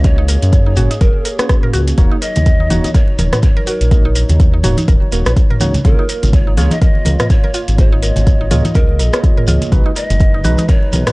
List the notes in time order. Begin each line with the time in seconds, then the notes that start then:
Already playing: C#2 A#3 C#5
0.04 A#3 C#4 F#4 G#4 C#5 D#5, kick, closed hi-hat, shekere
0.18 D#4
0.28 A#4, open hi-hat, shekere
0.42 F#2, closed hi-hat, shekere
0.52 kick, closed hi-hat, shekere
0.66 D#4
0.76 F#1 A#3 C#4 F#4 C#5, mid tom, open hi-hat, shekere
0.91 D#4, closed hi-hat, shekere
1.01 F#1 A#4, kick, closed hi-hat, shekere
1.25 A#4, open hi-hat, shekere
1.39 A#3 C#4 F#4 C#5, cross-stick, closed hi-hat, shekere
1.49 kick, cross-stick, closed hi-hat, shekere
1.63 A#4, mid tom
1.73 C#2 F#4, open hi-hat, shekere
1.88 closed hi-hat, shekere
1.98 D#1 F#3 A#3 D#4 F#4 C#5, kick, closed hi-hat, muted conga, high conga, shekere
2.12 D#4
2.22 A#4 D#5, open hi-hat, shekere
2.36 D#2, closed hi-hat, muted conga, low conga, shekere
2.46 kick, closed hi-hat, shekere
2.60 D#4
2.70 D#1 A#3 D#4 F#4 C#5, open hi-hat, muted conga, high conga, shekere
2.84 D#4, closed hi-hat, high conga, shekere
2.94 A#4 C#5, kick, closed hi-hat, shekere
3.08 muted conga
3.19 D#1 A#4, open hi-hat, high conga, low conga, shekere
3.33 F#4, cross-stick, closed hi-hat, mid tom, shekere
3.43 C#5, kick, closed hi-hat, shekere
3.57 A#4, muted conga
3.67 F#4 A#4, open hi-hat, shekere
3.81 A#1, closed hi-hat, shekere
3.91 A#3 D#4 F#4 D#5, kick, closed hi-hat, muted conga, high conga, shekere
4.05 D#4
4.15 A#4, open hi-hat, shekere
4.29 D#2, closed hi-hat, muted conga, low conga, shekere
4.40 kick, closed hi-hat, shekere
4.54 D#4
4.64 D#1 A#3 D#4 F#4 C#5, mid tom, open hi-hat, muted conga, high conga, shekere
4.77 D#4, closed hi-hat, high conga, shekere
4.88 D#1 A#4, kick, closed hi-hat, shekere
5.02 muted conga
5.12 D#1 A#3 D#4 F#4 A#4 C#5, open hi-hat, shekere
5.26 A#1 F#4, cross-stick, closed hi-hat, shekere
5.36 kick, closed hi-hat, shekere
5.50 A#4, mid tom, muted conga
5.60 C#2 A#3 D#4 F#4 C#5, open hi-hat, high conga, shekere
5.74 closed hi-hat, low conga, shekere
5.84 C#2 A#3 F4 G#4 A#4 C#5, kick, closed hi-hat, muted conga, high conga, shekere
5.99 D#4
6.09 A#4, open hi-hat, shekere
6.23 G#1, closed hi-hat, muted conga, low conga, shekere
6.33 C#5, kick, closed hi-hat, shekere
6.47 D#4
6.57 C#2 A#3 F4 G#4 C#5, open hi-hat, muted conga, high conga, shekere
6.71 D#4 D#5, closed hi-hat, high conga, shekere
6.82 A#4 D#5, kick, closed hi-hat, shekere
6.95 muted conga
7.05 C#2 A#4, open hi-hat, high conga, low conga, shekere
7.19 F4, cross-stick, closed hi-hat, mid tom, shekere
7.30 C#5, kick, closed hi-hat, shekere
7.43 A#4, muted conga
7.54 F4, open hi-hat, shekere
7.68 G#1, closed hi-hat, shekere
7.78 A#3 F4 G#4 C5 D#5, kick, closed hi-hat, muted conga, high conga, shekere
7.91 D#4 C#5
8.02 A#4, open hi-hat, shekere
8.16 G#1, closed hi-hat, muted conga, low conga, shekere
8.27 kick, closed hi-hat, shekere
8.41 D#4
8.51 C#2 A#3 F4 G#4 C#5, mid tom, open hi-hat, muted conga, high conga, shekere
8.65 D#4, closed hi-hat, high conga, shekere
8.74 C#2 A#4, kick, closed hi-hat, shekere
8.89 muted conga
8.99 A#1 A#4, open hi-hat, shekere
9.13 A#3 F4 G#4 C#5, cross-stick, closed hi-hat, shekere
9.24 kick, closed hi-hat, shekere
9.37 A#4, mid tom, muted conga
9.47 C#2 F4, open hi-hat, high conga, shekere
9.61 closed hi-hat, low conga, shekere
9.72 B1 G#3 D#4 F#4 B4, kick, closed hi-hat, muted conga, high conga, shekere
9.86 D#4
9.96 A#4 D#5, open hi-hat, shekere
10.10 F#1, closed hi-hat, muted conga, low conga, shekere
10.20 kick, closed hi-hat, shekere
10.34 D#4
10.44 B1 G#3 D#4 F#4 B4, open hi-hat, muted conga, high conga, shekere
10.58 D#4, closed hi-hat, high conga, shekere
10.68 A#4 C#5, kick, closed hi-hat, shekere
10.83 muted conga
10.93 B1 A#4, open hi-hat, high conga, low conga, shekere
11.07 F#4, cross-stick, closed hi-hat, mid tom, shekere